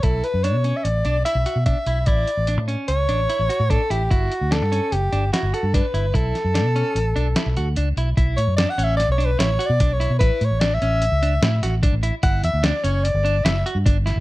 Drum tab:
HH |xxxxxxxxxx|xxxxxxxxxx|xxxxxxxxxx|xxxxxxxxxx|
SD |----------|----------|--o---o-o-|-oo---o---|
BD |o-------o-|o-------o-|o-------o-|o---------|

HH |xxxxxxxxxx|xxxxxxxxxx|xxxxxxxxxx|
SD |--o-o-o---|--o---oo--|--o---o--o|
BD |o-------o-|o-------o-|o-------o-|